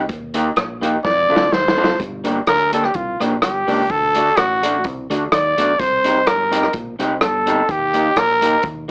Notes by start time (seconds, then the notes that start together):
0.09 D#2, kick, closed hi-hat
0.34 A#3 D#4 G4, closed hi-hat
0.56 A#1, cross-stick, closed hi-hat
0.81 A#3 D#4 G4, closed hi-hat
1.04 F2 D5, kick, snare
1.29 D2 C4 F4 A4
1.36 snare
1.52 D#2 C5, snare
1.68 snare
1.77 F#1 C4 F4 A4
1.84 snare
2.00 G1, kick, closed hi-hat
2.24 A#3 D4 G4, closed hi-hat
2.47 D2 A#4, cross-stick, closed hi-hat
2.72 A#3 D4 G4 A4, closed hi-hat
2.84 G4, cross-stick
2.94 C2 F4, kick, closed hi-hat
3.20 A#1 A#3 D4 G4, cross-stick, closed hi-hat
3.42 G1 G4, cross-stick, closed hi-hat
3.67 C#2 A#3 D4 G4, open hi-hat
3.90 D2 A4, kick, closed hi-hat
4.15 A3 D4 F#4, closed hi-hat
4.37 A1 F#4, cross-stick, closed hi-hat
4.63 A3 D4 F#4, closed hi-hat
4.84 C2, kick, closed hi-hat
5.10 D2 A3 D4 F#4, closed hi-hat
5.32 D#2 D5, cross-stick, closed hi-hat
5.57 B1 A3 D4 F#4, closed hi-hat
5.79 C2 C5, kick, closed hi-hat
6.04 C4 D#4 G4, closed hi-hat
6.27 G1 A#4, cross-stick, closed hi-hat
6.51 C4 D#4 G4, closed hi-hat
6.63 cross-stick
6.73 A#1, kick, closed hi-hat
6.99 C2 C4 D#4 G4, closed hi-hat
7.21 G1 A4, cross-stick, closed hi-hat
7.47 C4 D#4 G4, closed hi-hat
7.69 D#2 G4, kick, closed hi-hat
7.94 A#3 D#4 G4, closed hi-hat
8.16 A#1 A#4, cross-stick, closed hi-hat
8.41 A#3 D#4 G4, closed hi-hat
8.63 D#2, kick, closed hi-hat